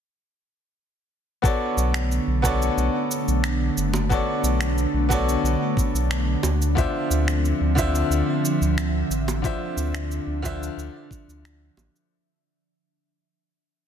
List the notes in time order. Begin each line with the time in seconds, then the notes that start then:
1.42 D3 A3 B3 D4 F#4 A4 C#5 D5, kick, shaker
1.76 B1, shaker
1.94 finger snap, shaker
2.12 shaker
2.27 B1
2.42 B3 F#4 A4 C#5 D5, kick, shaker
2.62 shaker
2.77 B1, shaker
3.11 shaker
3.28 B1, shaker
3.44 finger snap, shaker
3.77 F#1, shaker
3.94 high bongo, shaker
4.09 B3 F#4 A4 C#5 D5, kick, shaker
4.43 B1, shaker
4.61 finger snap, shaker
4.78 shaker
4.93 B1
5.09 B3 F#4 A4 C#5 D5, kick, shaker
5.29 shaker
5.43 B1, shaker
5.77 kick, shaker
5.93 B1, shaker
6.11 finger snap, shaker
6.43 D2, high bongo, shaker
6.62 shaker
6.75 D3 F3 C4 D4 F4 C5 E5, kick, shaker
7.10 D2, shaker
7.28 finger snap, shaker
7.45 shaker
7.60 D2
7.75 D3 D4 F4 C5 E5, kick, shaker
7.95 shaker
8.10 D2, shaker
8.45 shaker
8.61 D2, shaker
8.78 finger snap, shaker
9.10 A1, shaker
9.28 high bongo, shaker
9.42 D3 D4 F4 C5 E5, kick, shaker
9.76 D2, shaker
9.95 finger snap, shaker
10.11 shaker
10.27 D2
10.42 D3 D4 F4 C5 E5, kick, shaker
10.63 shaker
10.77 D2, shaker
11.11 kick, shaker
11.28 D2, shaker
11.45 finger snap, shaker
11.77 A1, high bongo, shaker
11.96 shaker